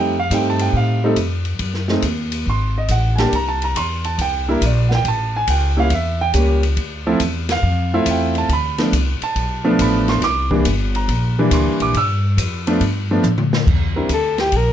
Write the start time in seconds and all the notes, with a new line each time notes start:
Already playing: F2 G3 A3 C4 D#4 G5
0.20 F5
0.30 G2 G3 A3 C4 D#4, kick, hi-hat pedal, ride
0.35 G5
0.50 A5
0.59 G5, ride
0.73 A2 F5, kick
1.04 G3 A3 C4 D#4 A4
1.16 F2, kick, hi-hat pedal, ride
1.45 ride
1.59 F#2, kick, ride
1.74 snare
1.88 G#3 A3 C4 D#4, snare
2.02 D#2, kick, hi-hat pedal, ride
2.32 ride
2.46 G#1 C6, kick
2.78 D#5
2.88 A1 F#5, kick, hi-hat pedal, ride
3.16 G3 A#3 D4 G4 G#5 A5, snare, ride
3.32 C2 A#5, kick, ride
3.49 A5
3.62 A#5, ride
3.75 E2 C6, kick, hi-hat pedal, ride
4.04 A5, ride
4.18 C2 G5, kick, ride
4.48 G3 A#3 D4 E4 A#4
4.61 A#1 D5, kick, hi-hat pedal, ride
4.89 F#5, snare
4.95 G5
5.04 A1, kick, ride
5.08 A5
5.37 G#5
5.48 C#2 G5, kick, hi-hat pedal, ride
5.77 G3 A#3 C#4 E4 F5
5.90 E2, kick, ride
5.95 E5
6.21 G5
6.34 C#2 G3 A#3 C#4 G4, kick, hi-hat pedal, ride
6.63 ride
6.76 D2, kick, ride
7.07 F3 A3 C4 E4
7.20 E2, kick, hi-hat pedal, ride
7.49 F5, snare, ride
7.63 F2, kick
7.94 A3 C4 E4 F4
8.05 E2, kick, hi-hat pedal, ride
8.11 G5
8.35 A5, ride
8.49 D2 B5, kick, ride
8.78 F3 A3 B3 D4, snare, ride
8.92 C2, kick, hi-hat pedal, ride
9.21 A5, muted upright bass stroke, ride
9.35 B1, kick, ride
9.64 F3 A3 B3 D4
9.79 A1 B5, kick, hi-hat pedal, ride
10.08 C6, snare, ride
10.21 C2 D6, kick, snare, ride
10.51 E3 G3 A#3 D4, kick
10.65 G1, kick, hi-hat pedal, ride
10.95 A#5, ride
11.08 A#1, kick, ride
11.39 E3 G3 A#3 D4
11.51 D2 C6, kick, hi-hat pedal, ride
11.65 C2
11.80 A#1 D6, ride
11.94 G2 E6, kick, ride
12.37 F2, kick, hi-hat pedal, ride
12.67 F3 A3 B3 D4, ride
12.80 G2, kick, ride
13.11 F3 A3 B3 D4
13.23 A2, hi-hat pedal, high tom
13.38 mid tom
13.53 snare
13.67 E2, kick, crash
13.96 G3 C4 D4 E4 A#4
14.09 D2, kick, hi-hat pedal, ride
14.14 A4
14.38 G4, snare, ride
14.52 A#1, kick, ride
14.57 A#4